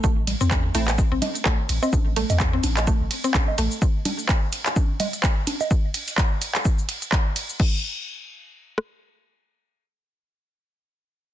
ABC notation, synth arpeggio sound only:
X:1
M:4/4
L:1/16
Q:"Swing 16ths" 1/4=127
K:Am
V:1 name="Synth arpeggio sound"
A, z2 C z2 A, z2 C z2 A, z2 C | z2 A, z2 C z2 A, z2 C z2 A, z | z16 | z16 |
z16 | z16 |]